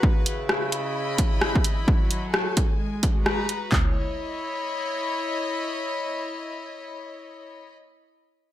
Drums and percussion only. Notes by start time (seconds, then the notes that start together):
0.03 kick
0.26 closed hi-hat
0.49 cross-stick
0.72 closed hi-hat
1.18 kick, closed hi-hat
1.41 cross-stick
1.55 kick
1.64 closed hi-hat
1.88 kick
2.11 closed hi-hat
2.34 cross-stick
2.57 kick, closed hi-hat
3.03 kick, closed hi-hat
3.26 cross-stick
3.49 closed hi-hat
3.72 kick, clap, floor tom